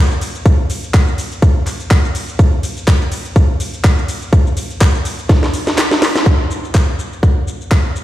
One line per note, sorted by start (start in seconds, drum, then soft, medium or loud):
0.11 shaker soft
0.21 open hi-hat loud
0.21 ride medium
0.21 shaker medium
0.35 closed hi-hat medium
0.35 shaker soft
0.46 kick loud
0.46 closed hi-hat medium
0.46 ride medium
0.46 shaker soft
0.70 open hi-hat loud
0.70 ride medium
0.70 shaker medium
0.83 closed hi-hat medium
0.83 shaker soft
0.94 kick loud
0.94 clap loud
0.94 closed hi-hat medium
0.94 ride medium
0.94 shaker soft
1.08 shaker soft
1.18 open hi-hat loud
1.18 ride medium
1.18 shaker medium
1.32 closed hi-hat medium
1.32 shaker soft
1.42 kick loud
1.42 closed hi-hat medium
1.42 ride medium
1.42 shaker soft
1.67 clap soft
1.67 open hi-hat loud
1.67 ride medium
1.67 shaker medium
1.80 closed hi-hat medium
1.80 shaker soft
1.91 kick loud
1.91 clap loud
1.91 closed hi-hat medium
1.91 ride medium
1.91 shaker soft
2.05 shaker soft
2.15 open hi-hat loud
2.15 ride medium
2.15 shaker medium
2.28 closed hi-hat medium
2.28 shaker soft
2.39 kick loud
2.39 closed hi-hat medium
2.39 ride medium
2.39 shaker soft
2.63 open hi-hat loud
2.63 ride medium
2.63 shaker medium
2.77 closed hi-hat medium
2.77 shaker soft
2.88 kick loud
2.88 clap loud
2.88 shaker soft
3.02 shaker soft
3.12 open hi-hat loud
3.12 ride medium
3.12 shaker medium
3.25 closed hi-hat medium
3.25 shaker soft
3.36 kick loud
3.36 closed hi-hat medium
3.36 ride medium
3.36 shaker soft
3.60 open hi-hat loud
3.60 ride medium
3.60 shaker medium
3.74 closed hi-hat medium
3.74 shaker soft
3.84 kick loud
3.84 clap loud
3.84 closed hi-hat medium
3.84 ride medium
3.84 shaker soft
3.98 shaker soft
4.08 open hi-hat loud
4.08 ride medium
4.08 shaker medium
4.22 closed hi-hat medium
4.22 shaker soft
4.33 kick loud
4.33 closed hi-hat medium
4.33 ride medium
4.33 shaker soft
4.47 shaker soft
4.57 open hi-hat loud
4.57 ride medium
4.57 shaker medium
4.70 closed hi-hat medium
4.70 shaker soft
4.81 kick loud
4.81 clap loud
4.81 shaker soft
4.95 shaker soft
5.05 open hi-hat loud
5.05 ride medium
5.05 shaker medium
5.19 closed hi-hat medium
5.19 shaker soft
5.29 kick loud
5.29 snare medium
5.29 closed hi-hat medium
5.29 ride medium
5.29 shaker soft
5.43 snare medium
5.43 shaker soft
5.54 open hi-hat loud
5.54 ride medium
5.54 shaker medium
5.67 snare medium
5.67 closed hi-hat medium
5.67 shaker soft
5.78 snare medium
5.78 clap loud
5.78 closed hi-hat medium
5.78 ride medium
5.78 shaker soft
5.91 snare medium
5.91 shaker soft
6.02 snare medium
6.02 open hi-hat loud
6.02 ride medium
6.02 shaker medium
6.16 snare medium
6.16 closed hi-hat medium
6.16 shaker soft
6.26 kick loud
6.26 shaker soft
6.51 shaker medium
6.64 shaker soft
6.75 kick loud
6.75 clap loud
6.75 shaker soft
6.99 shaker medium
7.13 shaker soft
7.23 kick loud
7.23 shaker soft
7.48 shaker medium
7.61 shaker soft
7.71 kick medium
7.71 clap loud
7.71 shaker soft
7.96 shaker medium